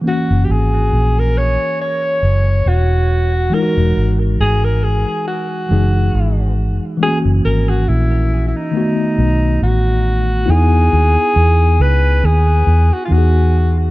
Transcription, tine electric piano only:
X:1
M:4/4
L:1/8
Q:"Swing 16ths" 1/4=69
K:Elyd
V:1 name="Tine electric piano"
[E,A,CF]8 | [E,G,D=F^F]4- [E,G,D=F^F] [E,G,DG]3 | [E,G,A,CF]4 [D,=A,B,F]4 | [K:E] [B,DEG]6 [E,B,DFG]2 |]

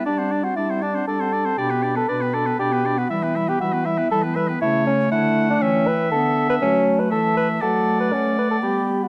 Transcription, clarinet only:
X:1
M:3/4
L:1/16
Q:1/4=119
K:Em
V:1 name="Clarinet"
D C D C D C D C D C D C | D B, D B, D B, D B, D B, D B, | G, B, G, B, G, B, G, B, G, B, G, B, | [K:D] A,12 |
B,4 A,8 | A,8 B,4 |]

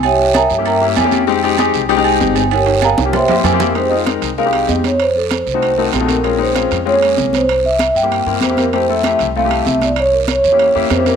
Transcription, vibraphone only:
X:1
M:4/4
L:1/8
Q:1/4=193
K:Fm
V:1 name="Vibraphone"
[Gd=eg]2 [Begb] [Gdg] [Begb] z3 | z8 | [GBdg]2 [Bfgb] [GBdg] [c=egc'] z c B | c e2 z f2 e d |
c =A c3 B A B | B c2 z d3 c- | c =e2 g3 c B | c =e2 z f2 e =d |
d B d4 c B |]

